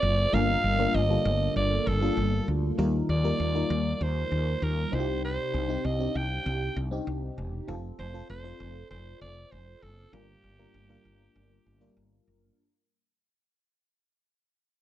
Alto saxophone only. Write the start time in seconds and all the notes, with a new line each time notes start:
Already playing: D5
0.34 F5
0.95 D#5
1.57 D5
1.88 A4
3.10 D5
3.95 D5
4.03 C5
4.64 A#4
4.94 C5
5.25 C5
5.86 D#5
6.17 G5
7.99 C5
8.30 C5
8.91 C5
9.22 D5
9.52 C5
9.83 A4
10.13 G4